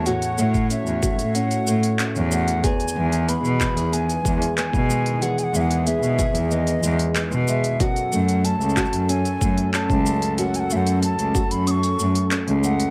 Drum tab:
HH |o-o-----o-----o-o-o---o-o-----o-|o-o---o-o-----o-o-o---o-o-----o-|o-o---o-o-----o---o---o-o-----o-|o-o---o-o-----o-o-o---o-------o-|
SH |x-x-x-x-x-x-x-x-x-x-x-x-x-x-x-x-|x-xx--x-x-x-x-x-x-x-x-x-x-x-x---|x-x-x-x-x-x-x-x-x-x-x-x-x-x-x-x-|x-x-x-x-x-xxxxx-x-x-x---x-x-x-x-|
CP |------------------------x-------|------------x-----------x-------|------------------------x-------|------------x-----------x-------|
BD |------o-----o-------------------|o-----------o-------o-----o-----|------------o-------------------|o-----------o-------o-----o-----|

HH |o-o---o-o-o---o-o-o---o-o-o---o-|
SH |x-x-x-x-x-x-x-x-x-x-x-x-x---x-x-|
CP |------------------------x-------|
BD |------------o-------------------|